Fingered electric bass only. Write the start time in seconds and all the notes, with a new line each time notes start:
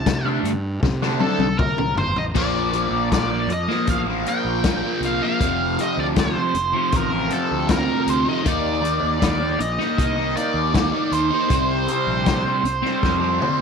0.06 C3
0.43 G2
0.83 C3
1.38 C2
1.95 G1
2.13 A1
2.35 A#1
2.91 A#1
3.47 F2
3.87 A1
4.45 A#1
5.00 C2
5.40 F1
5.97 D2
6.54 F1
6.92 A1
7.51 D2
8.07 D2
8.45 D#2
9.03 D#2
9.59 A#1
9.98 C2
10.54 D#2
11.11 D#2
11.50 C2
12.07 A#1
12.63 C2
13.03 F2